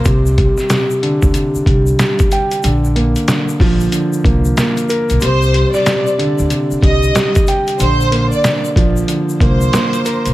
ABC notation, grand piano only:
X:1
M:4/4
L:1/8
Q:"Swing 16ths" 1/4=93
K:Bb
V:1 name="Grand piano" clef=bass
C, G, C, D, C, G, G, g | D, B, D, F, D, B, B, B | C, G, C, D, C, G, G, g | D, B, D, F, D, B, B, B |]